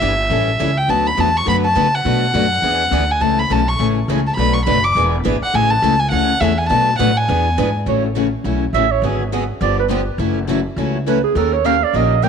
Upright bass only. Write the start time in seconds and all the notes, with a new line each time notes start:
0.01 G1
0.30 A1
0.60 C#2
0.88 D2
1.18 E2
1.47 F#2
1.76 C#3
2.05 B2
2.34 F#2
2.62 E2
2.91 D2
3.21 C#2
3.50 B1
3.79 A1
4.08 C#2
4.37 B1
4.67 F#1
4.95 E1
5.25 G#1
5.41 muted upright bass stroke
5.54 A1
5.82 C#2
6.12 D2
6.41 E2
6.70 B2
6.99 A2
7.29 E2
7.58 G#2
7.86 A1
8.44 B1
8.73 A1
9.02 G#1
9.61 G1
10.18 F#1
10.76 C#2
11.35 D#2
11.93 A#1